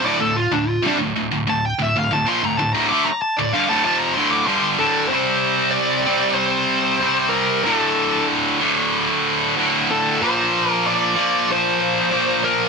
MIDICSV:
0, 0, Header, 1, 4, 480
1, 0, Start_track
1, 0, Key_signature, -1, "minor"
1, 0, Tempo, 634921
1, 37, Time_signature, 4, 2, 24, 8
1, 9592, End_track
2, 0, Start_track
2, 0, Title_t, "Lead electric guitar"
2, 0, Program_c, 0, 29
2, 40, Note_on_c, 0, 74, 105
2, 154, Note_on_c, 0, 69, 80
2, 155, Note_off_c, 0, 74, 0
2, 272, Note_off_c, 0, 69, 0
2, 276, Note_on_c, 0, 65, 94
2, 399, Note_off_c, 0, 65, 0
2, 399, Note_on_c, 0, 62, 54
2, 517, Note_off_c, 0, 62, 0
2, 517, Note_on_c, 0, 65, 108
2, 633, Note_off_c, 0, 65, 0
2, 658, Note_on_c, 0, 62, 89
2, 723, Note_off_c, 0, 62, 0
2, 1132, Note_on_c, 0, 81, 106
2, 1240, Note_off_c, 0, 81, 0
2, 1251, Note_on_c, 0, 79, 96
2, 1360, Note_off_c, 0, 79, 0
2, 1383, Note_on_c, 0, 76, 91
2, 1485, Note_off_c, 0, 76, 0
2, 1501, Note_on_c, 0, 77, 78
2, 1604, Note_off_c, 0, 77, 0
2, 1610, Note_on_c, 0, 81, 91
2, 1718, Note_off_c, 0, 81, 0
2, 1730, Note_on_c, 0, 84, 115
2, 1850, Note_off_c, 0, 84, 0
2, 1850, Note_on_c, 0, 82, 86
2, 1948, Note_off_c, 0, 82, 0
2, 1951, Note_on_c, 0, 81, 95
2, 2062, Note_off_c, 0, 81, 0
2, 2065, Note_on_c, 0, 82, 106
2, 2186, Note_off_c, 0, 82, 0
2, 2189, Note_on_c, 0, 86, 125
2, 2304, Note_off_c, 0, 86, 0
2, 2307, Note_on_c, 0, 82, 88
2, 2426, Note_off_c, 0, 82, 0
2, 2433, Note_on_c, 0, 81, 98
2, 2546, Note_on_c, 0, 74, 64
2, 2549, Note_off_c, 0, 81, 0
2, 2665, Note_off_c, 0, 74, 0
2, 2667, Note_on_c, 0, 77, 76
2, 2786, Note_off_c, 0, 77, 0
2, 2789, Note_on_c, 0, 81, 103
2, 2899, Note_off_c, 0, 81, 0
2, 2908, Note_on_c, 0, 81, 102
2, 3016, Note_off_c, 0, 81, 0
2, 3016, Note_on_c, 0, 82, 103
2, 3130, Note_off_c, 0, 82, 0
2, 3133, Note_on_c, 0, 84, 122
2, 3259, Note_off_c, 0, 84, 0
2, 3263, Note_on_c, 0, 86, 114
2, 3372, Note_off_c, 0, 86, 0
2, 3375, Note_on_c, 0, 84, 88
2, 3524, Note_off_c, 0, 84, 0
2, 3624, Note_on_c, 0, 69, 83
2, 3841, Note_off_c, 0, 69, 0
2, 3844, Note_on_c, 0, 72, 117
2, 4308, Note_off_c, 0, 72, 0
2, 4314, Note_on_c, 0, 74, 105
2, 4795, Note_off_c, 0, 74, 0
2, 4798, Note_on_c, 0, 72, 92
2, 5510, Note_on_c, 0, 70, 87
2, 5558, Note_off_c, 0, 72, 0
2, 5770, Note_off_c, 0, 70, 0
2, 5773, Note_on_c, 0, 69, 84
2, 6233, Note_off_c, 0, 69, 0
2, 7493, Note_on_c, 0, 69, 82
2, 7726, Note_on_c, 0, 72, 107
2, 7731, Note_off_c, 0, 69, 0
2, 8097, Note_off_c, 0, 72, 0
2, 8097, Note_on_c, 0, 70, 107
2, 8215, Note_off_c, 0, 70, 0
2, 8219, Note_on_c, 0, 74, 124
2, 8702, Note_off_c, 0, 74, 0
2, 8706, Note_on_c, 0, 72, 102
2, 9382, Note_off_c, 0, 72, 0
2, 9407, Note_on_c, 0, 70, 93
2, 9592, Note_off_c, 0, 70, 0
2, 9592, End_track
3, 0, Start_track
3, 0, Title_t, "Distorted electric guitar"
3, 0, Program_c, 1, 30
3, 24, Note_on_c, 1, 38, 117
3, 32, Note_on_c, 1, 45, 114
3, 141, Note_off_c, 1, 45, 0
3, 143, Note_off_c, 1, 38, 0
3, 150, Note_on_c, 1, 45, 82
3, 151, Note_on_c, 1, 38, 67
3, 345, Note_off_c, 1, 38, 0
3, 345, Note_off_c, 1, 45, 0
3, 391, Note_on_c, 1, 38, 66
3, 399, Note_on_c, 1, 45, 80
3, 585, Note_off_c, 1, 38, 0
3, 589, Note_off_c, 1, 45, 0
3, 625, Note_on_c, 1, 48, 94
3, 632, Note_on_c, 1, 55, 99
3, 743, Note_off_c, 1, 48, 0
3, 746, Note_off_c, 1, 55, 0
3, 750, Note_on_c, 1, 38, 69
3, 754, Note_on_c, 1, 45, 79
3, 867, Note_off_c, 1, 38, 0
3, 870, Note_off_c, 1, 45, 0
3, 876, Note_on_c, 1, 38, 69
3, 880, Note_on_c, 1, 45, 65
3, 985, Note_off_c, 1, 38, 0
3, 990, Note_off_c, 1, 45, 0
3, 994, Note_on_c, 1, 38, 72
3, 999, Note_on_c, 1, 45, 64
3, 1102, Note_off_c, 1, 45, 0
3, 1106, Note_off_c, 1, 38, 0
3, 1111, Note_on_c, 1, 45, 76
3, 1115, Note_on_c, 1, 38, 63
3, 1305, Note_off_c, 1, 45, 0
3, 1307, Note_off_c, 1, 38, 0
3, 1352, Note_on_c, 1, 38, 73
3, 1355, Note_on_c, 1, 45, 75
3, 1473, Note_off_c, 1, 38, 0
3, 1475, Note_off_c, 1, 45, 0
3, 1481, Note_on_c, 1, 38, 61
3, 1484, Note_on_c, 1, 45, 75
3, 1585, Note_off_c, 1, 38, 0
3, 1590, Note_off_c, 1, 45, 0
3, 1594, Note_on_c, 1, 38, 64
3, 1599, Note_on_c, 1, 45, 70
3, 1709, Note_off_c, 1, 38, 0
3, 1712, Note_on_c, 1, 46, 101
3, 1717, Note_off_c, 1, 45, 0
3, 1721, Note_on_c, 1, 53, 106
3, 1826, Note_off_c, 1, 46, 0
3, 1830, Note_off_c, 1, 53, 0
3, 1842, Note_on_c, 1, 45, 81
3, 1843, Note_on_c, 1, 38, 63
3, 1948, Note_off_c, 1, 38, 0
3, 1950, Note_off_c, 1, 45, 0
3, 1957, Note_on_c, 1, 38, 67
3, 1959, Note_on_c, 1, 45, 77
3, 2065, Note_off_c, 1, 38, 0
3, 2074, Note_on_c, 1, 38, 90
3, 2076, Note_off_c, 1, 45, 0
3, 2084, Note_on_c, 1, 45, 103
3, 2186, Note_off_c, 1, 38, 0
3, 2192, Note_off_c, 1, 45, 0
3, 2205, Note_on_c, 1, 50, 88
3, 2209, Note_on_c, 1, 57, 107
3, 2312, Note_off_c, 1, 50, 0
3, 2314, Note_off_c, 1, 57, 0
3, 2563, Note_on_c, 1, 45, 77
3, 2564, Note_on_c, 1, 38, 71
3, 2672, Note_off_c, 1, 38, 0
3, 2675, Note_on_c, 1, 43, 88
3, 2677, Note_off_c, 1, 45, 0
3, 2680, Note_on_c, 1, 50, 110
3, 2787, Note_off_c, 1, 43, 0
3, 2789, Note_off_c, 1, 50, 0
3, 2794, Note_on_c, 1, 38, 80
3, 2804, Note_on_c, 1, 45, 98
3, 2906, Note_off_c, 1, 38, 0
3, 2911, Note_off_c, 1, 45, 0
3, 2912, Note_on_c, 1, 41, 89
3, 2916, Note_on_c, 1, 48, 93
3, 2918, Note_on_c, 1, 53, 88
3, 3145, Note_off_c, 1, 41, 0
3, 3147, Note_off_c, 1, 48, 0
3, 3148, Note_off_c, 1, 53, 0
3, 3155, Note_on_c, 1, 45, 101
3, 3156, Note_on_c, 1, 38, 91
3, 3164, Note_on_c, 1, 50, 91
3, 3379, Note_off_c, 1, 38, 0
3, 3379, Note_off_c, 1, 50, 0
3, 3382, Note_on_c, 1, 43, 78
3, 3386, Note_off_c, 1, 45, 0
3, 3389, Note_on_c, 1, 50, 98
3, 3390, Note_on_c, 1, 55, 88
3, 3620, Note_off_c, 1, 43, 0
3, 3623, Note_off_c, 1, 50, 0
3, 3624, Note_off_c, 1, 55, 0
3, 3625, Note_on_c, 1, 38, 99
3, 3629, Note_on_c, 1, 45, 93
3, 3632, Note_on_c, 1, 50, 103
3, 3858, Note_off_c, 1, 38, 0
3, 3861, Note_on_c, 1, 48, 102
3, 3863, Note_off_c, 1, 45, 0
3, 3865, Note_off_c, 1, 50, 0
3, 3878, Note_on_c, 1, 55, 106
3, 3887, Note_on_c, 1, 60, 97
3, 4567, Note_off_c, 1, 60, 0
3, 4572, Note_off_c, 1, 48, 0
3, 4576, Note_on_c, 1, 60, 87
3, 4581, Note_off_c, 1, 55, 0
3, 4593, Note_on_c, 1, 55, 88
3, 4600, Note_on_c, 1, 48, 71
3, 5289, Note_off_c, 1, 48, 0
3, 5290, Note_off_c, 1, 60, 0
3, 5298, Note_off_c, 1, 55, 0
3, 5298, Note_on_c, 1, 48, 69
3, 5308, Note_on_c, 1, 55, 80
3, 5320, Note_on_c, 1, 60, 77
3, 5771, Note_off_c, 1, 48, 0
3, 5776, Note_off_c, 1, 55, 0
3, 5782, Note_off_c, 1, 60, 0
3, 5783, Note_on_c, 1, 38, 96
3, 5794, Note_on_c, 1, 45, 106
3, 5808, Note_on_c, 1, 50, 110
3, 6494, Note_off_c, 1, 38, 0
3, 6497, Note_off_c, 1, 50, 0
3, 6500, Note_off_c, 1, 45, 0
3, 6506, Note_on_c, 1, 50, 82
3, 6516, Note_on_c, 1, 45, 89
3, 6529, Note_on_c, 1, 38, 74
3, 7216, Note_off_c, 1, 50, 0
3, 7221, Note_off_c, 1, 45, 0
3, 7222, Note_off_c, 1, 38, 0
3, 7231, Note_on_c, 1, 38, 74
3, 7244, Note_on_c, 1, 45, 67
3, 7252, Note_on_c, 1, 50, 67
3, 7699, Note_off_c, 1, 38, 0
3, 7705, Note_off_c, 1, 45, 0
3, 7709, Note_off_c, 1, 50, 0
3, 7722, Note_on_c, 1, 46, 106
3, 7733, Note_on_c, 1, 53, 115
3, 7743, Note_on_c, 1, 58, 102
3, 8431, Note_off_c, 1, 58, 0
3, 8434, Note_on_c, 1, 58, 84
3, 8449, Note_off_c, 1, 53, 0
3, 8452, Note_on_c, 1, 53, 91
3, 8456, Note_off_c, 1, 46, 0
3, 8459, Note_on_c, 1, 46, 69
3, 9141, Note_off_c, 1, 58, 0
3, 9145, Note_off_c, 1, 46, 0
3, 9150, Note_off_c, 1, 53, 0
3, 9154, Note_on_c, 1, 46, 80
3, 9165, Note_on_c, 1, 53, 69
3, 9174, Note_on_c, 1, 58, 75
3, 9592, Note_off_c, 1, 46, 0
3, 9592, Note_off_c, 1, 53, 0
3, 9592, Note_off_c, 1, 58, 0
3, 9592, End_track
4, 0, Start_track
4, 0, Title_t, "Muted distorted electric guitar strokes"
4, 2332, Note_on_c, 9, 29, 57
4, 2407, Note_off_c, 9, 29, 0
4, 9592, End_track
0, 0, End_of_file